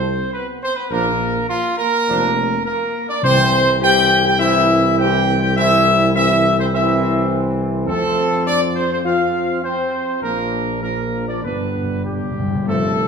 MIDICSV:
0, 0, Header, 1, 6, 480
1, 0, Start_track
1, 0, Key_signature, 0, "major"
1, 0, Tempo, 581395
1, 751, Time_signature, 4, 2, 24, 8
1, 7955, Tempo, 606061
1, 10682, End_track
2, 0, Start_track
2, 0, Title_t, "Trumpet section"
2, 0, Program_c, 0, 61
2, 0, Note_on_c, 0, 72, 95
2, 237, Note_off_c, 0, 72, 0
2, 263, Note_on_c, 0, 71, 90
2, 374, Note_off_c, 0, 71, 0
2, 508, Note_on_c, 0, 72, 109
2, 619, Note_on_c, 0, 71, 91
2, 621, Note_off_c, 0, 72, 0
2, 741, Note_on_c, 0, 70, 108
2, 744, Note_off_c, 0, 71, 0
2, 1194, Note_off_c, 0, 70, 0
2, 1221, Note_on_c, 0, 65, 103
2, 1455, Note_off_c, 0, 65, 0
2, 1463, Note_on_c, 0, 70, 118
2, 2157, Note_off_c, 0, 70, 0
2, 2184, Note_on_c, 0, 70, 96
2, 2520, Note_off_c, 0, 70, 0
2, 2553, Note_on_c, 0, 74, 103
2, 2659, Note_on_c, 0, 72, 127
2, 2662, Note_off_c, 0, 74, 0
2, 3109, Note_off_c, 0, 72, 0
2, 3145, Note_on_c, 0, 79, 127
2, 3484, Note_off_c, 0, 79, 0
2, 3513, Note_on_c, 0, 79, 103
2, 3625, Note_off_c, 0, 79, 0
2, 3628, Note_on_c, 0, 76, 119
2, 4083, Note_off_c, 0, 76, 0
2, 4113, Note_on_c, 0, 79, 113
2, 4462, Note_off_c, 0, 79, 0
2, 4471, Note_on_c, 0, 79, 102
2, 4585, Note_off_c, 0, 79, 0
2, 4587, Note_on_c, 0, 76, 127
2, 5037, Note_off_c, 0, 76, 0
2, 5069, Note_on_c, 0, 76, 127
2, 5406, Note_off_c, 0, 76, 0
2, 5433, Note_on_c, 0, 72, 99
2, 5487, Note_off_c, 0, 72, 0
2, 5555, Note_on_c, 0, 76, 101
2, 5998, Note_off_c, 0, 76, 0
2, 6500, Note_on_c, 0, 69, 116
2, 6951, Note_off_c, 0, 69, 0
2, 6992, Note_on_c, 0, 74, 125
2, 7099, Note_off_c, 0, 74, 0
2, 7228, Note_on_c, 0, 72, 91
2, 7341, Note_off_c, 0, 72, 0
2, 7356, Note_on_c, 0, 72, 92
2, 7409, Note_off_c, 0, 72, 0
2, 7471, Note_on_c, 0, 77, 97
2, 7921, Note_off_c, 0, 77, 0
2, 7952, Note_on_c, 0, 72, 90
2, 8389, Note_off_c, 0, 72, 0
2, 8415, Note_on_c, 0, 70, 99
2, 8860, Note_off_c, 0, 70, 0
2, 8896, Note_on_c, 0, 70, 89
2, 9232, Note_off_c, 0, 70, 0
2, 9251, Note_on_c, 0, 74, 73
2, 9368, Note_off_c, 0, 74, 0
2, 9384, Note_on_c, 0, 71, 74
2, 9841, Note_off_c, 0, 71, 0
2, 9869, Note_on_c, 0, 67, 73
2, 10331, Note_off_c, 0, 67, 0
2, 10355, Note_on_c, 0, 69, 105
2, 10682, Note_off_c, 0, 69, 0
2, 10682, End_track
3, 0, Start_track
3, 0, Title_t, "French horn section"
3, 0, Program_c, 1, 60
3, 0, Note_on_c, 1, 60, 92
3, 239, Note_off_c, 1, 60, 0
3, 290, Note_on_c, 1, 59, 80
3, 512, Note_on_c, 1, 60, 84
3, 522, Note_off_c, 1, 59, 0
3, 566, Note_off_c, 1, 60, 0
3, 637, Note_on_c, 1, 59, 81
3, 745, Note_off_c, 1, 59, 0
3, 754, Note_on_c, 1, 58, 106
3, 1201, Note_off_c, 1, 58, 0
3, 1235, Note_on_c, 1, 53, 82
3, 1345, Note_off_c, 1, 53, 0
3, 1494, Note_on_c, 1, 58, 92
3, 2173, Note_off_c, 1, 58, 0
3, 2209, Note_on_c, 1, 58, 97
3, 2533, Note_off_c, 1, 58, 0
3, 2557, Note_on_c, 1, 62, 93
3, 2665, Note_off_c, 1, 62, 0
3, 2675, Note_on_c, 1, 60, 110
3, 3117, Note_off_c, 1, 60, 0
3, 3143, Note_on_c, 1, 67, 117
3, 3482, Note_off_c, 1, 67, 0
3, 3500, Note_on_c, 1, 67, 113
3, 3557, Note_off_c, 1, 67, 0
3, 3629, Note_on_c, 1, 64, 122
3, 4084, Note_off_c, 1, 64, 0
3, 4117, Note_on_c, 1, 67, 108
3, 4451, Note_off_c, 1, 67, 0
3, 4479, Note_on_c, 1, 67, 105
3, 4589, Note_off_c, 1, 67, 0
3, 4607, Note_on_c, 1, 64, 116
3, 5047, Note_off_c, 1, 64, 0
3, 5072, Note_on_c, 1, 64, 108
3, 5408, Note_off_c, 1, 64, 0
3, 5448, Note_on_c, 1, 60, 101
3, 5499, Note_off_c, 1, 60, 0
3, 5549, Note_on_c, 1, 64, 102
3, 5995, Note_off_c, 1, 64, 0
3, 6513, Note_on_c, 1, 57, 103
3, 6958, Note_off_c, 1, 57, 0
3, 6982, Note_on_c, 1, 62, 97
3, 7092, Note_off_c, 1, 62, 0
3, 7219, Note_on_c, 1, 60, 78
3, 7276, Note_off_c, 1, 60, 0
3, 7344, Note_on_c, 1, 60, 85
3, 7400, Note_off_c, 1, 60, 0
3, 7467, Note_on_c, 1, 65, 110
3, 7919, Note_off_c, 1, 65, 0
3, 7955, Note_on_c, 1, 60, 90
3, 8391, Note_off_c, 1, 60, 0
3, 8423, Note_on_c, 1, 58, 81
3, 8864, Note_off_c, 1, 58, 0
3, 8894, Note_on_c, 1, 58, 76
3, 9231, Note_off_c, 1, 58, 0
3, 9254, Note_on_c, 1, 62, 70
3, 9369, Note_off_c, 1, 62, 0
3, 9382, Note_on_c, 1, 59, 68
3, 9840, Note_off_c, 1, 59, 0
3, 9872, Note_on_c, 1, 55, 77
3, 10333, Note_off_c, 1, 55, 0
3, 10364, Note_on_c, 1, 57, 101
3, 10682, Note_off_c, 1, 57, 0
3, 10682, End_track
4, 0, Start_track
4, 0, Title_t, "Trombone section"
4, 0, Program_c, 2, 61
4, 748, Note_on_c, 2, 62, 87
4, 753, Note_on_c, 2, 53, 76
4, 915, Note_off_c, 2, 62, 0
4, 918, Note_off_c, 2, 53, 0
4, 1717, Note_on_c, 2, 53, 82
4, 1717, Note_on_c, 2, 62, 88
4, 1886, Note_off_c, 2, 53, 0
4, 1886, Note_off_c, 2, 62, 0
4, 2650, Note_on_c, 2, 52, 89
4, 2655, Note_on_c, 2, 60, 87
4, 3104, Note_off_c, 2, 52, 0
4, 3107, Note_off_c, 2, 60, 0
4, 3134, Note_on_c, 2, 52, 81
4, 3136, Note_on_c, 2, 60, 84
4, 3592, Note_off_c, 2, 52, 0
4, 3593, Note_off_c, 2, 60, 0
4, 3622, Note_on_c, 2, 52, 90
4, 3623, Note_on_c, 2, 60, 81
4, 4080, Note_off_c, 2, 52, 0
4, 4081, Note_off_c, 2, 60, 0
4, 4113, Note_on_c, 2, 52, 92
4, 4115, Note_on_c, 2, 60, 89
4, 4561, Note_off_c, 2, 52, 0
4, 4561, Note_off_c, 2, 60, 0
4, 4586, Note_on_c, 2, 52, 93
4, 4591, Note_on_c, 2, 60, 91
4, 5037, Note_off_c, 2, 52, 0
4, 5039, Note_off_c, 2, 60, 0
4, 5067, Note_on_c, 2, 52, 89
4, 5068, Note_on_c, 2, 60, 80
4, 5517, Note_off_c, 2, 52, 0
4, 5517, Note_off_c, 2, 60, 0
4, 5548, Note_on_c, 2, 52, 95
4, 5553, Note_on_c, 2, 60, 97
4, 6470, Note_off_c, 2, 52, 0
4, 6472, Note_off_c, 2, 60, 0
4, 6495, Note_on_c, 2, 53, 93
4, 6495, Note_on_c, 2, 60, 94
4, 7432, Note_off_c, 2, 60, 0
4, 7449, Note_off_c, 2, 53, 0
4, 7459, Note_on_c, 2, 53, 76
4, 7463, Note_on_c, 2, 60, 80
4, 7915, Note_off_c, 2, 53, 0
4, 7917, Note_off_c, 2, 60, 0
4, 7950, Note_on_c, 2, 53, 74
4, 7952, Note_on_c, 2, 60, 81
4, 8388, Note_off_c, 2, 53, 0
4, 8389, Note_off_c, 2, 60, 0
4, 8418, Note_on_c, 2, 62, 69
4, 8426, Note_on_c, 2, 53, 66
4, 8865, Note_off_c, 2, 53, 0
4, 8887, Note_off_c, 2, 62, 0
4, 8897, Note_on_c, 2, 62, 54
4, 8898, Note_on_c, 2, 53, 56
4, 9349, Note_off_c, 2, 53, 0
4, 9349, Note_off_c, 2, 62, 0
4, 9381, Note_on_c, 2, 55, 67
4, 9383, Note_on_c, 2, 62, 63
4, 10090, Note_off_c, 2, 62, 0
4, 10121, Note_off_c, 2, 55, 0
4, 10367, Note_on_c, 2, 57, 76
4, 10369, Note_on_c, 2, 53, 74
4, 10528, Note_off_c, 2, 57, 0
4, 10529, Note_off_c, 2, 53, 0
4, 10682, End_track
5, 0, Start_track
5, 0, Title_t, "Timpani"
5, 0, Program_c, 3, 47
5, 2666, Note_on_c, 3, 48, 101
5, 3354, Note_off_c, 3, 48, 0
5, 9378, Note_on_c, 3, 43, 36
5, 9434, Note_off_c, 3, 43, 0
5, 9444, Note_on_c, 3, 43, 39
5, 9490, Note_off_c, 3, 43, 0
5, 9500, Note_on_c, 3, 43, 42
5, 9558, Note_off_c, 3, 43, 0
5, 9636, Note_on_c, 3, 43, 56
5, 9686, Note_off_c, 3, 43, 0
5, 9695, Note_on_c, 3, 43, 60
5, 9752, Note_off_c, 3, 43, 0
5, 9764, Note_on_c, 3, 43, 56
5, 9806, Note_off_c, 3, 43, 0
5, 9815, Note_on_c, 3, 43, 58
5, 9875, Note_off_c, 3, 43, 0
5, 9884, Note_on_c, 3, 43, 65
5, 9941, Note_off_c, 3, 43, 0
5, 9949, Note_on_c, 3, 43, 66
5, 10000, Note_off_c, 3, 43, 0
5, 10010, Note_on_c, 3, 43, 72
5, 10063, Note_off_c, 3, 43, 0
5, 10073, Note_on_c, 3, 43, 82
5, 10128, Note_off_c, 3, 43, 0
5, 10137, Note_on_c, 3, 43, 96
5, 10196, Note_off_c, 3, 43, 0
5, 10204, Note_on_c, 3, 43, 95
5, 10253, Note_off_c, 3, 43, 0
5, 10262, Note_on_c, 3, 43, 100
5, 10319, Note_off_c, 3, 43, 0
5, 10682, End_track
6, 0, Start_track
6, 0, Title_t, "Tuba"
6, 0, Program_c, 4, 58
6, 0, Note_on_c, 4, 36, 85
6, 192, Note_off_c, 4, 36, 0
6, 749, Note_on_c, 4, 34, 94
6, 1149, Note_off_c, 4, 34, 0
6, 1723, Note_on_c, 4, 29, 83
6, 2120, Note_off_c, 4, 29, 0
6, 2671, Note_on_c, 4, 36, 98
6, 6507, Note_on_c, 4, 41, 96
6, 6519, Note_off_c, 4, 36, 0
6, 8199, Note_off_c, 4, 41, 0
6, 8420, Note_on_c, 4, 34, 77
6, 9376, Note_on_c, 4, 31, 65
6, 9388, Note_off_c, 4, 34, 0
6, 10118, Note_off_c, 4, 31, 0
6, 10361, Note_on_c, 4, 29, 87
6, 10682, Note_off_c, 4, 29, 0
6, 10682, End_track
0, 0, End_of_file